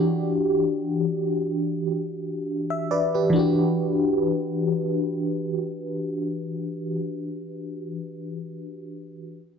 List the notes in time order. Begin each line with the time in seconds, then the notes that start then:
Already playing: E3 D4 F#4 G4
2.70 E5
2.91 B4 D5
3.15 G4 B4
3.30 E3 D4
3.36 F#4 G4